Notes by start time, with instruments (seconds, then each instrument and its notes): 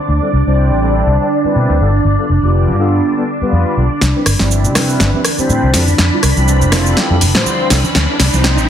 Already playing: string machine D4 D5
0.08 fingered electric bass D2
0.21 analog polysynth G3 C4 D4 E4 A4
0.33 fingered electric bass C2
0.46 fingered electric bass C2, analog polysynth G3 C4 D4 E4 C5
0.71 fingered electric bass A1
0.81 analog polysynth G3 C4 D4 E4 A4
1.06 fingered electric bass C2
1.19 analog polysynth G3 C4 D4 E4 A4
1.44 analog polysynth G3 C4 D4 E4 B4, muted fingered electric bass stroke
1.56 fingered electric bass B2
1.69 fingered electric bass D2
1.80 fingered electric bass G1, analog polysynth G3 B3 D4 F4 A4
2.05 fingered electric bass G1
2.18 analog polysynth G3 B3 D4 F4 A4
2.29 fingered electric bass F1
2.43 fingered electric bass F1, analog polysynth G3 B3 D4 F4 D5
2.67 fingered electric bass G2
2.78 analog polysynth G3 B3 D4 F4 A4
3.16 analog polysynth G3 B3 D4 F4 A4
3.41 analog polysynth G3 B3 D4 F4 B4, muted fingered electric bass stroke
3.52 fingered electric bass F2
3.77 fingered electric bass B1, analog polysynth G3 B3 D4 F4 A4
4.01 fingered electric bass C2, string machine D4 B5, snare, riser, shaker
4.15 analog polysynth G3 C4 D4 E4 B4
4.26 fingered electric bass G1, cross-stick, open hi-hat, shaker
4.39 fingered electric bass G1, analog polysynth G3 C4 D4 E4 D5, snare, tambourine, high conga, shaker
4.50 tambourine, shaker
4.64 fingered electric bass C3, tambourine, shaker
4.75 analog polysynth G3 C4 D4 E4 B4, cross-stick, snare, open hi-hat, tambourine, high conga, low conga, shaker
4.88 tambourine, shaker
5.00 fingered electric bass G1, snare, shaker
5.13 analog polysynth G3 C4 D4 E4 B4, tambourine, high conga
5.25 cross-stick, open hi-hat, tambourine, shaker
5.38 analog polysynth G3 C4 D4 E4 C5, muted fingered electric bass stroke, tambourine, shaker
5.48 fingered electric bass A2, tambourine, high conga, shaker
5.62 fingered electric bass C2, tambourine
5.74 fingered electric bass F2, analog polysynth G3 C4 E4 F4 A4, snare, open hi-hat, shaker
5.88 tambourine, high conga, shaker
5.98 fingered electric bass F2, snare, tambourine, shaker
6.12 analog polysynth G3 C4 E4 F4 A4, tambourine
6.22 fingered electric bass C2, cross-stick, open hi-hat, tambourine, shaker
6.36 fingered electric bass C2, analog polysynth G3 C4 E4 F4 D5, tambourine, high conga, shaker
6.48 tambourine, shaker
6.61 fingered electric bass F1, shaker
6.72 analog polysynth G3 C4 E4 F4 A4, cross-stick, snare, open hi-hat, tambourine, low conga, shaker
6.86 tambourine, shaker
6.97 snare, shaker
7.10 fingered electric bass F2, analog polysynth G3 C4 E4 F4 A4, tambourine, high conga
7.21 fingered electric bass F1, open hi-hat, tambourine, low conga, shaker
7.34 fingered electric bass A2, analog polysynth G3 C4 E4 F4 C5, snare, tambourine, shaker
7.46 tambourine, high conga, shaker
7.61 tambourine
7.70 fingered electric bass C2, analog polysynth G3 E4 F4 A4, snare, open hi-hat, tambourine, shaker
7.84 tambourine, high conga, shaker
7.95 fingered electric bass D2, snare, tambourine, shaker
8.08 analog polysynth G3 C4 D4 E4 A4, tambourine
8.20 fingered electric bass C2, snare, open hi-hat, tambourine, shaker
8.33 fingered electric bass C2, analog polysynth G3 C4 D4 E4 C5, tambourine, high conga, shaker
8.44 snare, tambourine, shaker
8.58 fingered electric bass A1, tambourine, shaker